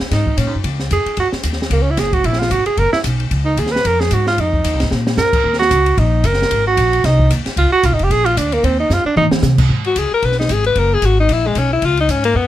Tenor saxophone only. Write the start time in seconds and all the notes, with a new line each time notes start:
0.12 D#4
0.38 C#4
0.93 G#4
1.20 F#4
1.72 A#3
1.82 C#4
1.91 E4
1.99 G#4
2.14 F#4
2.26 E4
2.40 F4
2.52 F#4
2.66 G#4
2.79 A#4
2.93 E4
3.45 D#4
3.59 G#4
3.72 B4
3.86 A#4
4.00 G#4
4.13 F#4
4.28 F4
4.40 D#4
5.18 A#4
5.59 F#4
5.99 D#4
6.26 A#4
6.67 F#4
7.05 D#4
7.58 F4
7.72 F#4
7.85 F4
7.93 D#4
8.03 G4
8.11 G#4
8.25 F4
8.38 D4
8.53 A#3
8.65 C4
8.80 D#4
8.93 F4
9.06 D4
9.17 D#4